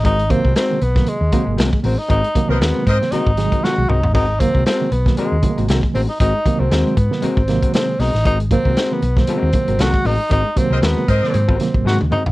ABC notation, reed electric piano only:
X:1
M:4/4
L:1/16
Q:"Swing 16ths" 1/4=117
K:Abmix
V:1 name="Reed electric piano" clef=bass
z2 [C,E,G,B,]2 z [C,E,G,B,] z [C,E,G,B,]2 z [B,,C,E,G,B,]4 z2 | z2 [C,E,G,B,]2 z [C,E,G,B,] z [C,E,G,B,]2 z [C,E,G,A,]4 z2 | z2 [C,E,G,B,]2 z [C,E,G,B,] z [C,E,G,B,]2 z [C,E,G,=A,B,]4 z2 | z2 [C,E,G,B,]2 z [C,E,G,A,] z [C,E,G,B,]2 z [C,E,G,B,]4 z2 |
z2 [C,E,G,B,]2 z [C,E,G,B,] z [C,E,G,B,]2 z [B,,C,E,G,B,]4 z2 | z2 [C,E,G,B,]2 z [C,E,G,B,] z [C,E,G,B,]2 z [C,E,G,B,]4 z2 |]